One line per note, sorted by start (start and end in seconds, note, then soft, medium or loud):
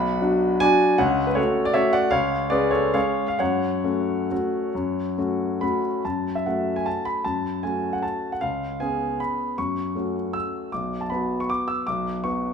0.00 0.19 B1 medium
0.00 0.57 F#5 medium
0.00 0.60 B5 loud
0.21 0.57 F#3 soft
0.21 0.57 D4 soft
0.21 0.57 F#4 medium
0.60 0.96 F#3 medium
0.60 0.96 D4 medium
0.60 0.97 F#4 medium
0.60 0.97 D5 medium
0.60 0.99 G#5 loud
0.98 1.36 C#2 medium
0.98 1.26 C#5 medium
0.98 1.28 F#5 medium
1.27 1.37 B4 medium
1.35 1.71 A3 medium
1.35 1.72 C#4 soft
1.35 1.72 F#4 medium
1.35 1.64 A4 medium
1.35 1.65 C#5 medium
1.65 1.76 D5 medium
1.74 2.09 A3 medium
1.74 2.09 C#4 medium
1.74 2.09 F#4 medium
1.74 1.93 C#5 medium
1.74 1.94 E5 medium
1.93 2.11 D5 medium
1.93 2.12 F#5 medium
2.11 2.50 C#2 medium
2.11 2.48 C#5 medium
2.11 2.50 F5 loud
2.50 2.90 G#3 soft
2.50 2.90 C#4 soft
2.50 2.91 G#4 soft
2.50 2.71 B4 medium
2.50 2.72 D5 medium
2.71 2.93 A4 medium
2.71 2.93 C#5 medium
2.94 3.35 G#3 soft
2.94 3.35 C#4 soft
2.94 3.36 G#4 soft
2.94 3.26 C#5 medium
2.94 3.27 F5 medium
3.28 3.39 F5 medium
3.39 3.83 F#2 medium
3.39 5.81 C#5 medium
3.39 5.85 F#5 medium
3.84 4.27 A3 soft
3.84 4.27 C#4 soft
3.84 4.27 F#4 soft
4.31 4.72 A3 soft
4.31 4.72 C#4 soft
4.31 4.72 F#4 soft
4.75 5.17 F#2 medium
5.18 5.58 A3 soft
5.18 5.58 C#4 soft
5.18 5.59 F#4 soft
5.61 6.01 A3 soft
5.61 6.02 C#4 soft
5.61 6.02 F#4 soft
5.61 6.05 B5 medium
6.05 6.44 F#2 medium
6.05 6.35 A5 medium
6.35 6.46 E5 medium
6.46 7.22 A3 soft
6.46 7.22 C#4 soft
6.46 7.22 F#4 soft
6.46 6.76 F#5 soft
6.76 6.86 G#5 medium
6.86 7.06 A5 medium
7.05 7.25 B5 medium
7.25 7.63 F#2 soft
7.25 7.63 A5 medium
7.63 8.37 A3 soft
7.63 8.37 C#4 soft
7.63 8.38 F#4 soft
7.63 7.93 G#5 medium
7.93 8.03 F#5 medium
8.03 8.32 A5 medium
8.32 8.42 F#5 medium
8.41 8.79 C#2 soft
8.41 8.79 F5 medium
8.80 9.54 B3 soft
8.80 9.55 C#4 soft
8.80 9.55 G#4 soft
8.80 9.20 G#5 medium
9.20 9.58 B5 medium
9.58 9.95 F#2 soft
9.58 10.15 C#6 medium
9.95 10.69 A3 soft
9.95 10.69 C#4 soft
9.95 10.69 F#4 soft
10.33 10.72 E6 medium
10.72 11.10 B1 soft
10.72 11.00 D6 medium
11.01 11.10 A5 soft
11.10 11.84 F#3 soft
11.10 11.84 B3 soft
11.10 11.84 F#4 soft
11.10 11.39 B5 medium
11.40 11.50 C#6 medium
11.50 11.69 D6 medium
11.68 11.87 E6 medium
11.87 12.24 B1 medium
11.87 12.25 D6 medium
12.24 12.54 F#3 soft
12.24 12.54 B3 soft
12.24 12.54 F#4 soft
12.24 12.54 C#6 medium